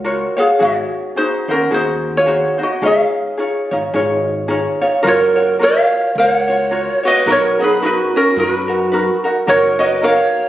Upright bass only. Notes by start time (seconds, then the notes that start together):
Already playing: C#2
0.61 G#1
1.48 D#2
1.72 D#2
2.82 C#2
3.71 G#1
3.94 G#1
5.04 F#1
6.15 C#2
7.26 B1
8.36 F#2
9.48 F#1